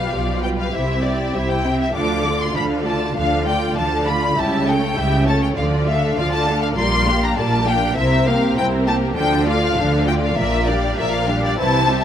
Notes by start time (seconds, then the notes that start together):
Already playing: G3 F4 G4 B4 F5
0.12 B1 B2 F3 F4 G4 D5
0.43 G3 F4 G4 B4 G5
0.60 F5
0.73 C2 C3 E4 G4 C5 E5
1.04 C4 E4 G4 D5 E5
1.34 C2 C3 E4 G4 C5 E5
1.50 G5
1.64 C4 E4 G4 E5
1.81 E5
1.94 D2 D3 F3 D4 A4 F5 D6
2.25 A3 F4 D5
2.41 C6
2.54 D2 D3 F3 D4 A4 F5 B5
2.84 A3 F4 D5 A5
3.14 D2 D3 F3 D4 A4 F5
3.45 A3 F4 D5 G5
3.76 D2 D3 F3 D4 A4 F5 A5
4.07 A3 F4 D5 B5
4.37 C#2 C#3 G3 E4 G4 E5 A5
4.66 A3 C#4 A4 C#5 G5
4.96 C#2 C#3 G3 E4 G4 E5
5.26 A3 C#4 A4 C#5 A5
5.43 G5
5.56 D2 D3 F3 F4 D5 F5
5.87 A3 D4 A4 E5 F5
6.17 D2 D3 F3 F4 D5 F5
6.32 A5
6.46 A3 D4 A4 F5
6.62 F5
6.76 A#1 A#2 G3 F4 A#4 D5 C6
7.07 A#3 D4 G4 F5
7.24 A#5
7.36 A#1 A#2 G3 F4 A#4 D5 A5
7.66 A#3 D4 G4 F5 G5
7.96 C2 C3 C4 E4 A#4 C5 E5
8.26 A#3 C4 G4 A#4 F5
8.55 C2 C3 C4 E4 A#4 C5 G5
8.85 A#3 C4 G4 A#4 A5
9.16 D2 D3 F3 D4 A4 G5
9.46 A3 F4 D5 F5
9.77 D2 D3 F3 D4 A4
10.07 A3 F4 D5 G5
10.24 F5
10.37 A#1 A#2 F3 F4 A#4 D5 E5
10.67 G3 D4 G4 D5 F5
10.98 A#1 A#2 F3 F4 A#4 D5 E5
11.12 F5
11.28 G3 D4 G4 F5
11.44 D5
11.58 C2 C3 E3 E4 C5 A5
11.89 G3 C4 G4 E5